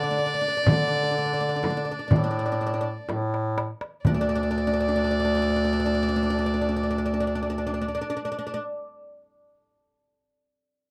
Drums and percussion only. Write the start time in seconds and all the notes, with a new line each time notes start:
0.20 darbuka ka
0.66 frame drum, darbuka dum
1.64 darbuka tek, frame drum
2.11 frame drum, darbuka dum
2.61 darbuka ka
3.09 darbuka tek, frame drum
3.34 darbuka ka
3.58 darbuka tek
3.81 darbuka ka
4.05 frame drum, darbuka dum